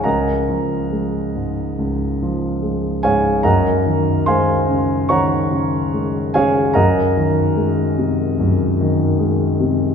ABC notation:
X:1
M:4/4
L:1/8
Q:1/4=72
K:Abmix
V:1 name="Grand piano"
[Begb]6 z [Adfa] | [Begb]2 [cfac']2 [dgbd']3 [Adfa] | [Begb]6 z2 |]
V:2 name="Grand piano" clef=bass
D,, F, A, A,, D,, F, A, A,, | G,, E, A, D, E, D, A, D, | G,, E, A, C, G,, E, A, C, |]